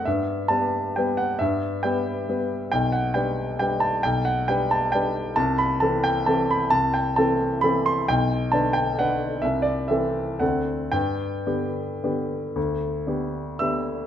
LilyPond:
<<
  \new Staff \with { instrumentName = "Grand piano" } { \time 3/4 \key e \minor \tempo 4 = 132 e''4 a''4 g''8 fis''8 | e''4 g''4. r8 | \key g \major g''8 fis''8 g''4 g''8 a''8 | g''8 fis''8 g''8 a''8 g''4 |
a''8 b''8 a''8 g''8 a''8 b''8 | a''8 g''8 a''4 b''8 c'''8 | g''4 a''8 g''8 fis''4 | e''8 d''8 e''4 fis''4 |
g''2.~ | g''2 <e'' e'''>4 | }
  \new Staff \with { instrumentName = "Grand piano" } { \time 3/4 \key e \minor g,4 <g b b'>4 <g b b'>4 | g,4 <g b b'>4 <g b b'>4 | \key g \major b,,4 <g d' b'>4 <g d' b'>4 | b,,4 <g d' b'>4 <g d' b'>4 |
c,4 <e c' a'>4 <e c' a'>4 | c,4 <e c' a'>4 <e c' a'>4 | b,,4 <d d' b'>4 <d d' b'>4 | c,4 <e c' a'>4 <d, d c' a'>4 |
g,4 <d b g'>4 <d b g'>4 | d,4 <d b g'>4 <d b g'>4 | }
>>